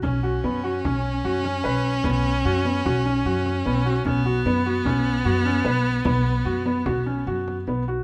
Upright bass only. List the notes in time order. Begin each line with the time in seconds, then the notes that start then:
0.02 B1
0.44 F#2
0.84 B1
1.24 F#2
1.65 B1
2.05 B1
2.45 F#2
2.85 B1
3.25 F#2
3.66 B1
4.05 B1
4.45 F#2
4.85 B1
5.25 F#2
5.65 B1
6.05 B1
6.45 F#2
6.86 B1
7.27 F#2
7.67 B1